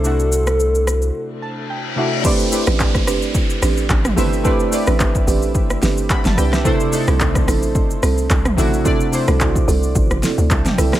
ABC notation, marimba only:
X:1
M:4/4
L:1/16
Q:"Swing 16ths" 1/4=109
K:Ador
V:1 name="Marimba"
z16 | [CDGB] z2 [CDGB] z2 [CDGB] z3 [CDGB] z3 [CDGB] z | [CDGB] z2 [CDGB] z2 [CDGB] z3 [CDGB] z3 [CDGB] z | [CEA] z2 [CEA] z2 [CEA] z3 [CEA] z3 [CEA] z |
[CEA] z2 [CEA] z2 [CEA] z3 [CEA] z3 [CEA] z |]